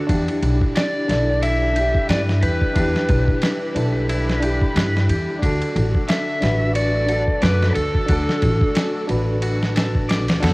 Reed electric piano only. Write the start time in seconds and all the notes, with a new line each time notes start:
Already playing: D4 F#4 A4 B4
0.07 D4 E4
0.13 G4
1.08 D4 E4 A4
1.74 D4 E4
1.80 G4
2.73 D4 E4
2.79 G4
3.75 D4 E4 A4
4.40 D4 E4
4.47 G4
5.39 D4 F#4
5.46 A4
6.41 D4 F#4 B4
7.06 D4 F#4
7.12 A4
8.06 D4 F#4
8.12 A4
9.07 D4 F#4 B4
10.40 D4 F#4 A4